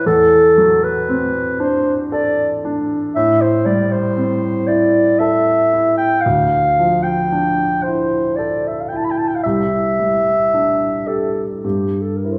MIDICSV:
0, 0, Header, 1, 3, 480
1, 0, Start_track
1, 0, Tempo, 1032702
1, 24, Time_signature, 3, 2, 24, 8
1, 2904, Tempo, 1065719
1, 4824, Tempo, 1149425
1, 5607, End_track
2, 0, Start_track
2, 0, Title_t, "Clarinet"
2, 0, Program_c, 0, 71
2, 30, Note_on_c, 0, 69, 99
2, 388, Note_on_c, 0, 71, 83
2, 395, Note_off_c, 0, 69, 0
2, 748, Note_on_c, 0, 72, 84
2, 755, Note_off_c, 0, 71, 0
2, 902, Note_off_c, 0, 72, 0
2, 989, Note_on_c, 0, 74, 82
2, 1211, Note_off_c, 0, 74, 0
2, 1466, Note_on_c, 0, 76, 90
2, 1587, Note_on_c, 0, 72, 81
2, 1594, Note_off_c, 0, 76, 0
2, 1697, Note_on_c, 0, 74, 74
2, 1704, Note_off_c, 0, 72, 0
2, 1820, Note_on_c, 0, 72, 80
2, 1827, Note_off_c, 0, 74, 0
2, 2171, Note_on_c, 0, 74, 87
2, 2178, Note_off_c, 0, 72, 0
2, 2411, Note_on_c, 0, 76, 89
2, 2418, Note_off_c, 0, 74, 0
2, 2774, Note_off_c, 0, 76, 0
2, 2777, Note_on_c, 0, 79, 82
2, 2888, Note_on_c, 0, 77, 93
2, 2895, Note_off_c, 0, 79, 0
2, 3257, Note_on_c, 0, 79, 75
2, 3264, Note_off_c, 0, 77, 0
2, 3615, Note_on_c, 0, 72, 78
2, 3622, Note_off_c, 0, 79, 0
2, 3855, Note_on_c, 0, 74, 65
2, 3862, Note_off_c, 0, 72, 0
2, 3999, Note_on_c, 0, 76, 54
2, 4006, Note_off_c, 0, 74, 0
2, 4055, Note_on_c, 0, 77, 51
2, 4062, Note_off_c, 0, 76, 0
2, 4092, Note_on_c, 0, 79, 54
2, 4099, Note_off_c, 0, 77, 0
2, 4128, Note_on_c, 0, 81, 57
2, 4135, Note_off_c, 0, 79, 0
2, 4162, Note_on_c, 0, 83, 55
2, 4169, Note_off_c, 0, 81, 0
2, 4192, Note_on_c, 0, 79, 53
2, 4199, Note_off_c, 0, 83, 0
2, 4223, Note_on_c, 0, 81, 57
2, 4230, Note_off_c, 0, 79, 0
2, 4269, Note_on_c, 0, 79, 50
2, 4276, Note_off_c, 0, 81, 0
2, 4302, Note_on_c, 0, 77, 56
2, 4309, Note_off_c, 0, 79, 0
2, 4336, Note_off_c, 0, 77, 0
2, 4339, Note_on_c, 0, 76, 85
2, 5058, Note_on_c, 0, 69, 61
2, 5065, Note_off_c, 0, 76, 0
2, 5212, Note_off_c, 0, 69, 0
2, 5297, Note_on_c, 0, 67, 46
2, 5451, Note_on_c, 0, 69, 45
2, 5458, Note_off_c, 0, 67, 0
2, 5515, Note_on_c, 0, 70, 40
2, 5521, Note_off_c, 0, 69, 0
2, 5576, Note_on_c, 0, 72, 39
2, 5583, Note_off_c, 0, 70, 0
2, 5607, Note_off_c, 0, 72, 0
2, 5607, End_track
3, 0, Start_track
3, 0, Title_t, "Grand piano"
3, 0, Program_c, 1, 0
3, 0, Control_c, 1, 64, 127
3, 29, Note_on_c, 1, 40, 64
3, 31, Control_c, 1, 64, 0
3, 95, Control_c, 1, 64, 127
3, 268, Note_on_c, 1, 54, 53
3, 505, Note_on_c, 1, 60, 54
3, 646, Note_off_c, 1, 54, 0
3, 743, Note_on_c, 1, 62, 53
3, 888, Note_off_c, 1, 60, 0
3, 986, Note_on_c, 1, 69, 56
3, 1129, Note_off_c, 1, 62, 0
3, 1231, Note_on_c, 1, 62, 52
3, 1369, Note_off_c, 1, 69, 0
3, 1446, Note_off_c, 1, 40, 0
3, 1466, Note_off_c, 1, 62, 0
3, 1470, Control_c, 1, 64, 0
3, 1472, Note_on_c, 1, 45, 63
3, 1532, Control_c, 1, 64, 127
3, 1699, Note_on_c, 1, 55, 52
3, 1936, Note_on_c, 1, 60, 48
3, 2077, Note_off_c, 1, 55, 0
3, 2176, Note_on_c, 1, 64, 45
3, 2319, Note_off_c, 1, 60, 0
3, 2418, Note_on_c, 1, 69, 54
3, 2562, Note_off_c, 1, 64, 0
3, 2664, Note_on_c, 1, 64, 44
3, 2806, Note_off_c, 1, 69, 0
3, 2889, Note_off_c, 1, 45, 0
3, 2906, Note_off_c, 1, 64, 0
3, 2910, Control_c, 1, 64, 0
3, 2910, Note_on_c, 1, 38, 59
3, 2994, Control_c, 1, 64, 127
3, 3149, Note_on_c, 1, 53, 46
3, 3389, Note_on_c, 1, 62, 44
3, 3530, Note_off_c, 1, 53, 0
3, 3631, Note_on_c, 1, 64, 39
3, 3768, Note_off_c, 1, 62, 0
3, 3867, Note_on_c, 1, 69, 45
3, 4008, Note_off_c, 1, 64, 0
3, 4110, Note_on_c, 1, 64, 43
3, 4247, Note_off_c, 1, 69, 0
3, 4326, Note_off_c, 1, 38, 0
3, 4346, Note_off_c, 1, 64, 0
3, 4348, Control_c, 1, 64, 0
3, 4349, Note_on_c, 1, 36, 50
3, 4412, Control_c, 1, 64, 127
3, 4591, Note_on_c, 1, 55, 34
3, 4837, Note_on_c, 1, 62, 35
3, 4966, Note_off_c, 1, 55, 0
3, 5060, Note_on_c, 1, 67, 35
3, 5205, Note_off_c, 1, 62, 0
3, 5282, Note_off_c, 1, 36, 0
3, 5297, Note_off_c, 1, 67, 0
3, 5297, Note_on_c, 1, 43, 41
3, 5302, Control_c, 1, 64, 0
3, 5385, Control_c, 1, 64, 127
3, 5548, Note_on_c, 1, 64, 26
3, 5551, Note_on_c, 1, 70, 27
3, 5607, Note_off_c, 1, 43, 0
3, 5607, Note_off_c, 1, 64, 0
3, 5607, Note_off_c, 1, 70, 0
3, 5607, End_track
0, 0, End_of_file